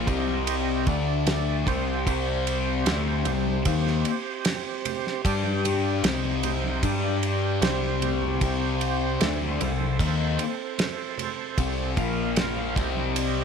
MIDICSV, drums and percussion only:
0, 0, Header, 1, 2, 480
1, 0, Start_track
1, 0, Tempo, 792602
1, 1254, Time_signature, 4, 2, 24, 8
1, 8140, End_track
2, 0, Start_track
2, 0, Title_t, "Drums"
2, 45, Note_on_c, 9, 36, 101
2, 45, Note_on_c, 9, 51, 65
2, 105, Note_off_c, 9, 36, 0
2, 106, Note_off_c, 9, 51, 0
2, 166, Note_on_c, 9, 63, 65
2, 227, Note_off_c, 9, 63, 0
2, 286, Note_on_c, 9, 51, 88
2, 346, Note_off_c, 9, 51, 0
2, 525, Note_on_c, 9, 51, 62
2, 526, Note_on_c, 9, 36, 103
2, 585, Note_off_c, 9, 51, 0
2, 587, Note_off_c, 9, 36, 0
2, 764, Note_on_c, 9, 63, 62
2, 767, Note_on_c, 9, 51, 82
2, 772, Note_on_c, 9, 38, 107
2, 824, Note_off_c, 9, 63, 0
2, 827, Note_off_c, 9, 51, 0
2, 833, Note_off_c, 9, 38, 0
2, 1010, Note_on_c, 9, 36, 103
2, 1010, Note_on_c, 9, 64, 61
2, 1013, Note_on_c, 9, 51, 64
2, 1071, Note_off_c, 9, 36, 0
2, 1071, Note_off_c, 9, 64, 0
2, 1074, Note_off_c, 9, 51, 0
2, 1252, Note_on_c, 9, 36, 98
2, 1253, Note_on_c, 9, 51, 82
2, 1312, Note_off_c, 9, 36, 0
2, 1314, Note_off_c, 9, 51, 0
2, 1495, Note_on_c, 9, 51, 64
2, 1556, Note_off_c, 9, 51, 0
2, 1733, Note_on_c, 9, 51, 89
2, 1736, Note_on_c, 9, 64, 59
2, 1738, Note_on_c, 9, 38, 110
2, 1793, Note_off_c, 9, 51, 0
2, 1797, Note_off_c, 9, 64, 0
2, 1799, Note_off_c, 9, 38, 0
2, 1970, Note_on_c, 9, 51, 64
2, 1975, Note_on_c, 9, 64, 60
2, 2030, Note_off_c, 9, 51, 0
2, 2036, Note_off_c, 9, 64, 0
2, 2101, Note_on_c, 9, 63, 60
2, 2162, Note_off_c, 9, 63, 0
2, 2212, Note_on_c, 9, 51, 93
2, 2214, Note_on_c, 9, 36, 105
2, 2273, Note_off_c, 9, 51, 0
2, 2275, Note_off_c, 9, 36, 0
2, 2343, Note_on_c, 9, 38, 31
2, 2404, Note_off_c, 9, 38, 0
2, 2453, Note_on_c, 9, 51, 68
2, 2513, Note_off_c, 9, 51, 0
2, 2693, Note_on_c, 9, 51, 93
2, 2699, Note_on_c, 9, 38, 98
2, 2700, Note_on_c, 9, 63, 61
2, 2754, Note_off_c, 9, 51, 0
2, 2759, Note_off_c, 9, 38, 0
2, 2761, Note_off_c, 9, 63, 0
2, 2939, Note_on_c, 9, 51, 69
2, 2939, Note_on_c, 9, 64, 60
2, 3000, Note_off_c, 9, 51, 0
2, 3000, Note_off_c, 9, 64, 0
2, 3070, Note_on_c, 9, 38, 32
2, 3130, Note_off_c, 9, 38, 0
2, 3178, Note_on_c, 9, 36, 95
2, 3181, Note_on_c, 9, 51, 92
2, 3239, Note_off_c, 9, 36, 0
2, 3242, Note_off_c, 9, 51, 0
2, 3293, Note_on_c, 9, 63, 60
2, 3353, Note_off_c, 9, 63, 0
2, 3419, Note_on_c, 9, 64, 60
2, 3422, Note_on_c, 9, 51, 76
2, 3479, Note_off_c, 9, 64, 0
2, 3483, Note_off_c, 9, 51, 0
2, 3657, Note_on_c, 9, 51, 100
2, 3661, Note_on_c, 9, 64, 69
2, 3662, Note_on_c, 9, 38, 115
2, 3718, Note_off_c, 9, 51, 0
2, 3722, Note_off_c, 9, 64, 0
2, 3723, Note_off_c, 9, 38, 0
2, 3783, Note_on_c, 9, 63, 72
2, 3843, Note_off_c, 9, 63, 0
2, 3896, Note_on_c, 9, 51, 71
2, 3899, Note_on_c, 9, 64, 63
2, 3956, Note_off_c, 9, 51, 0
2, 3960, Note_off_c, 9, 64, 0
2, 4019, Note_on_c, 9, 63, 65
2, 4080, Note_off_c, 9, 63, 0
2, 4136, Note_on_c, 9, 36, 95
2, 4136, Note_on_c, 9, 51, 88
2, 4196, Note_off_c, 9, 51, 0
2, 4197, Note_off_c, 9, 36, 0
2, 4377, Note_on_c, 9, 51, 61
2, 4438, Note_off_c, 9, 51, 0
2, 4616, Note_on_c, 9, 51, 82
2, 4616, Note_on_c, 9, 63, 69
2, 4621, Note_on_c, 9, 38, 105
2, 4677, Note_off_c, 9, 51, 0
2, 4677, Note_off_c, 9, 63, 0
2, 4682, Note_off_c, 9, 38, 0
2, 4736, Note_on_c, 9, 63, 49
2, 4797, Note_off_c, 9, 63, 0
2, 4854, Note_on_c, 9, 64, 60
2, 4858, Note_on_c, 9, 51, 62
2, 4914, Note_off_c, 9, 64, 0
2, 4918, Note_off_c, 9, 51, 0
2, 4977, Note_on_c, 9, 64, 67
2, 5037, Note_off_c, 9, 64, 0
2, 5095, Note_on_c, 9, 36, 104
2, 5095, Note_on_c, 9, 51, 81
2, 5155, Note_off_c, 9, 51, 0
2, 5156, Note_off_c, 9, 36, 0
2, 5335, Note_on_c, 9, 51, 64
2, 5396, Note_off_c, 9, 51, 0
2, 5574, Note_on_c, 9, 64, 76
2, 5576, Note_on_c, 9, 51, 88
2, 5581, Note_on_c, 9, 38, 101
2, 5635, Note_off_c, 9, 64, 0
2, 5636, Note_off_c, 9, 51, 0
2, 5642, Note_off_c, 9, 38, 0
2, 5702, Note_on_c, 9, 63, 67
2, 5763, Note_off_c, 9, 63, 0
2, 5818, Note_on_c, 9, 51, 69
2, 5819, Note_on_c, 9, 64, 67
2, 5879, Note_off_c, 9, 51, 0
2, 5880, Note_off_c, 9, 64, 0
2, 5936, Note_on_c, 9, 63, 67
2, 5997, Note_off_c, 9, 63, 0
2, 6053, Note_on_c, 9, 36, 92
2, 6056, Note_on_c, 9, 51, 86
2, 6113, Note_off_c, 9, 36, 0
2, 6116, Note_off_c, 9, 51, 0
2, 6292, Note_on_c, 9, 51, 68
2, 6352, Note_off_c, 9, 51, 0
2, 6531, Note_on_c, 9, 63, 68
2, 6534, Note_on_c, 9, 51, 89
2, 6539, Note_on_c, 9, 38, 105
2, 6592, Note_off_c, 9, 63, 0
2, 6594, Note_off_c, 9, 51, 0
2, 6600, Note_off_c, 9, 38, 0
2, 6768, Note_on_c, 9, 64, 65
2, 6778, Note_on_c, 9, 51, 68
2, 6829, Note_off_c, 9, 64, 0
2, 6838, Note_off_c, 9, 51, 0
2, 7011, Note_on_c, 9, 36, 98
2, 7012, Note_on_c, 9, 51, 89
2, 7072, Note_off_c, 9, 36, 0
2, 7072, Note_off_c, 9, 51, 0
2, 7250, Note_on_c, 9, 36, 104
2, 7250, Note_on_c, 9, 51, 71
2, 7310, Note_off_c, 9, 51, 0
2, 7311, Note_off_c, 9, 36, 0
2, 7488, Note_on_c, 9, 51, 91
2, 7493, Note_on_c, 9, 38, 108
2, 7493, Note_on_c, 9, 64, 63
2, 7548, Note_off_c, 9, 51, 0
2, 7554, Note_off_c, 9, 38, 0
2, 7554, Note_off_c, 9, 64, 0
2, 7612, Note_on_c, 9, 63, 69
2, 7672, Note_off_c, 9, 63, 0
2, 7729, Note_on_c, 9, 36, 106
2, 7733, Note_on_c, 9, 64, 58
2, 7735, Note_on_c, 9, 51, 70
2, 7790, Note_off_c, 9, 36, 0
2, 7793, Note_off_c, 9, 64, 0
2, 7796, Note_off_c, 9, 51, 0
2, 7843, Note_on_c, 9, 63, 59
2, 7904, Note_off_c, 9, 63, 0
2, 7970, Note_on_c, 9, 51, 88
2, 8030, Note_off_c, 9, 51, 0
2, 8140, End_track
0, 0, End_of_file